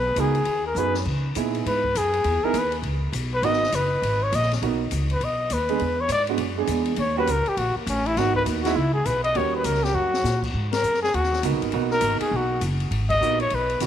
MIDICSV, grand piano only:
0, 0, Header, 1, 2, 480
1, 0, Start_track
1, 0, Key_signature, 5, "minor"
1, 0, Tempo, 296150
1, 1721, Time_signature, 4, 2, 24, 8
1, 22472, End_track
2, 0, Start_track
2, 0, Title_t, "Grand piano"
2, 0, Program_c, 0, 0
2, 284, Note_on_c, 0, 63, 48
2, 288, Note_on_c, 0, 59, 58
2, 292, Note_on_c, 0, 66, 47
2, 296, Note_on_c, 0, 70, 60
2, 554, Note_off_c, 0, 63, 0
2, 556, Note_off_c, 0, 59, 0
2, 558, Note_off_c, 0, 66, 0
2, 560, Note_off_c, 0, 70, 0
2, 1250, Note_on_c, 0, 59, 49
2, 1250, Note_on_c, 0, 63, 47
2, 1257, Note_on_c, 0, 66, 47
2, 1265, Note_on_c, 0, 68, 65
2, 1516, Note_off_c, 0, 59, 0
2, 1517, Note_off_c, 0, 63, 0
2, 1520, Note_off_c, 0, 66, 0
2, 1524, Note_off_c, 0, 68, 0
2, 2195, Note_on_c, 0, 59, 52
2, 2205, Note_on_c, 0, 64, 54
2, 2206, Note_on_c, 0, 63, 47
2, 2210, Note_on_c, 0, 68, 59
2, 2918, Note_off_c, 0, 59, 0
2, 2924, Note_off_c, 0, 63, 0
2, 2924, Note_off_c, 0, 64, 0
2, 2926, Note_off_c, 0, 68, 0
2, 3965, Note_on_c, 0, 59, 65
2, 3968, Note_on_c, 0, 68, 69
2, 3969, Note_on_c, 0, 63, 58
2, 3970, Note_on_c, 0, 64, 65
2, 4114, Note_off_c, 0, 59, 0
2, 4116, Note_off_c, 0, 68, 0
2, 4117, Note_off_c, 0, 63, 0
2, 4117, Note_off_c, 0, 64, 0
2, 5571, Note_on_c, 0, 58, 63
2, 5576, Note_on_c, 0, 63, 61
2, 5584, Note_on_c, 0, 66, 77
2, 5585, Note_on_c, 0, 59, 62
2, 5836, Note_off_c, 0, 58, 0
2, 5839, Note_off_c, 0, 63, 0
2, 5842, Note_off_c, 0, 66, 0
2, 5843, Note_off_c, 0, 59, 0
2, 7491, Note_on_c, 0, 58, 57
2, 7496, Note_on_c, 0, 59, 49
2, 7499, Note_on_c, 0, 63, 55
2, 7511, Note_on_c, 0, 66, 61
2, 7756, Note_off_c, 0, 58, 0
2, 7758, Note_off_c, 0, 59, 0
2, 7760, Note_off_c, 0, 63, 0
2, 7766, Note_off_c, 0, 66, 0
2, 9229, Note_on_c, 0, 56, 70
2, 9236, Note_on_c, 0, 59, 58
2, 9237, Note_on_c, 0, 62, 54
2, 9246, Note_on_c, 0, 68, 69
2, 9385, Note_off_c, 0, 56, 0
2, 9389, Note_off_c, 0, 59, 0
2, 9390, Note_off_c, 0, 62, 0
2, 9394, Note_off_c, 0, 68, 0
2, 10195, Note_on_c, 0, 56, 71
2, 10203, Note_on_c, 0, 62, 62
2, 10204, Note_on_c, 0, 59, 69
2, 10211, Note_on_c, 0, 66, 67
2, 10348, Note_off_c, 0, 56, 0
2, 10353, Note_off_c, 0, 59, 0
2, 10353, Note_off_c, 0, 62, 0
2, 10357, Note_off_c, 0, 66, 0
2, 10658, Note_on_c, 0, 56, 63
2, 10663, Note_on_c, 0, 59, 59
2, 10669, Note_on_c, 0, 62, 53
2, 10676, Note_on_c, 0, 68, 73
2, 11282, Note_off_c, 0, 56, 0
2, 11284, Note_off_c, 0, 59, 0
2, 11287, Note_off_c, 0, 62, 0
2, 11291, Note_off_c, 0, 68, 0
2, 11623, Note_on_c, 0, 55, 78
2, 11635, Note_on_c, 0, 58, 60
2, 11638, Note_on_c, 0, 61, 61
2, 11640, Note_on_c, 0, 66, 89
2, 11782, Note_off_c, 0, 55, 0
2, 11788, Note_off_c, 0, 58, 0
2, 11790, Note_off_c, 0, 61, 0
2, 11791, Note_off_c, 0, 66, 0
2, 13257, Note_on_c, 0, 58, 57
2, 13265, Note_on_c, 0, 59, 52
2, 13269, Note_on_c, 0, 63, 56
2, 13277, Note_on_c, 0, 66, 57
2, 13968, Note_off_c, 0, 58, 0
2, 13972, Note_off_c, 0, 59, 0
2, 13974, Note_off_c, 0, 63, 0
2, 13978, Note_off_c, 0, 66, 0
2, 14032, Note_on_c, 0, 56, 69
2, 14038, Note_on_c, 0, 63, 57
2, 14040, Note_on_c, 0, 59, 58
2, 14041, Note_on_c, 0, 64, 83
2, 14187, Note_off_c, 0, 56, 0
2, 14190, Note_off_c, 0, 63, 0
2, 14191, Note_off_c, 0, 59, 0
2, 14191, Note_off_c, 0, 64, 0
2, 15162, Note_on_c, 0, 55, 60
2, 15163, Note_on_c, 0, 58, 56
2, 15168, Note_on_c, 0, 61, 58
2, 15172, Note_on_c, 0, 66, 67
2, 16493, Note_off_c, 0, 55, 0
2, 16494, Note_off_c, 0, 58, 0
2, 16496, Note_off_c, 0, 61, 0
2, 16498, Note_off_c, 0, 66, 0
2, 18543, Note_on_c, 0, 59, 61
2, 18547, Note_on_c, 0, 58, 62
2, 18550, Note_on_c, 0, 63, 57
2, 18558, Note_on_c, 0, 66, 73
2, 18989, Note_off_c, 0, 58, 0
2, 18991, Note_off_c, 0, 59, 0
2, 19001, Note_off_c, 0, 66, 0
2, 19006, Note_off_c, 0, 63, 0
2, 19013, Note_on_c, 0, 58, 66
2, 19015, Note_on_c, 0, 59, 60
2, 19026, Note_on_c, 0, 66, 69
2, 19031, Note_on_c, 0, 63, 63
2, 20342, Note_off_c, 0, 58, 0
2, 20342, Note_off_c, 0, 59, 0
2, 20348, Note_off_c, 0, 66, 0
2, 20350, Note_off_c, 0, 63, 0
2, 21415, Note_on_c, 0, 58, 61
2, 21425, Note_on_c, 0, 66, 65
2, 21426, Note_on_c, 0, 59, 55
2, 21432, Note_on_c, 0, 63, 59
2, 21681, Note_off_c, 0, 58, 0
2, 21686, Note_off_c, 0, 59, 0
2, 21686, Note_off_c, 0, 66, 0
2, 21689, Note_off_c, 0, 63, 0
2, 22381, Note_on_c, 0, 58, 55
2, 22392, Note_on_c, 0, 63, 54
2, 22394, Note_on_c, 0, 59, 51
2, 22396, Note_on_c, 0, 66, 64
2, 22472, Note_off_c, 0, 58, 0
2, 22472, Note_off_c, 0, 59, 0
2, 22472, Note_off_c, 0, 63, 0
2, 22472, Note_off_c, 0, 66, 0
2, 22472, End_track
0, 0, End_of_file